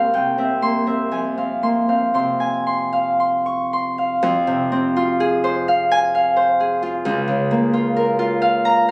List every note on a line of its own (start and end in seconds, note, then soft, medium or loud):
0.00 0.13 C2 medium
0.00 0.37 C4 medium
0.00 0.19 F5 medium
0.00 0.19 G#5 medium
0.00 0.61 C6 medium
0.14 1.17 C2 medium
0.14 1.17 G5 medium
0.38 0.85 C4 soft
0.38 0.85 E5 medium
0.62 1.05 A#3 soft
0.62 1.62 C6 medium
0.86 1.37 C4 soft
0.86 1.17 E5 medium
1.11 4.21 F2 soft
1.11 2.39 G#5 soft
1.37 1.88 C4 soft
1.37 1.87 F5 soft
1.63 2.07 A#3 soft
1.63 2.13 C6 soft
1.89 4.71 C4 soft
1.89 2.91 F5 soft
2.14 4.27 C3 soft
2.14 2.65 C6 soft
2.40 5.90 G#5 soft
2.67 3.19 C6 medium
2.93 3.97 F5 soft
3.20 3.72 C6 soft
3.46 3.91 C#6 medium
3.73 7.09 C6 soft
3.98 5.67 F5 soft
4.23 7.08 F2 medium
4.47 7.09 C3 medium
4.72 7.09 C4 medium
4.96 6.81 F4 medium
5.20 6.59 G#4 medium
5.44 6.35 C5 medium
5.68 6.14 F5 medium
5.91 7.09 G#5 loud
6.15 8.40 F5 medium
6.36 7.09 C5 medium
6.60 7.09 G#4 medium
6.82 7.72 F4 medium
7.05 8.91 C#2 medium
7.28 8.91 C#3 medium
7.51 8.91 A#3 medium
7.73 8.18 F4 medium
7.96 8.91 A#4 medium
8.19 8.91 F4 medium
8.42 8.87 F5 medium
8.65 8.91 A#5 loud